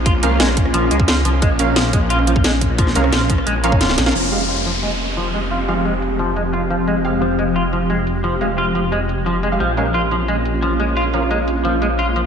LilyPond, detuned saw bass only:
\new Staff \with { instrumentName = "Detuned saw bass" } { \clef bass \time 4/4 \key f \minor \tempo 4 = 176 bes,,8 c,8 bes,,4 bes,,8 des,4 c,8 | bes,,8 bes,,2.~ bes,,8~ | bes,,8 c,8 bes,,4 bes,,4. bes,,8 | f,,1~ |
f,,1~ | f,,1~ | f,,1 | bes,,1~ |
bes,,1 | }